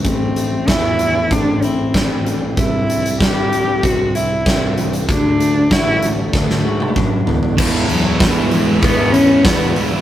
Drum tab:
CC |----------------|----------------|----------------|x---------------|
HH |x-x-x-x-x-x-x-x-|x-xxx-x-x-x-x-xx|x-x-x-x---------|--o-o-o-o-o-o-o-|
SD |----o-------o---|----o-------o---|----o---oo------|----o-------o---|
T1 |----------------|----------------|-----------o----|----------------|
T2 |----------------|----------------|------------o---|----------------|
FT |----------------|----------------|--------------oo|----------------|
BD |o---o---o---o---|o---o---o---o---|o---o---o---o---|o---o---o---o---|